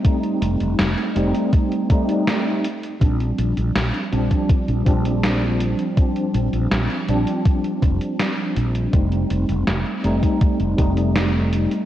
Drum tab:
HH |xxxxxxxxxxxxx-xx|xxxxxxxxxxxxx-xx|xxxxxxxxxxxxx-xx|xxxxxxxxxxxxx-xx|
SD |----o-------o---|----o-------o---|----o-------o---|----o-------o---|
BD |o-------o-o-----|o------oo-o-----|o-------o-o-----|o------oo-o-----|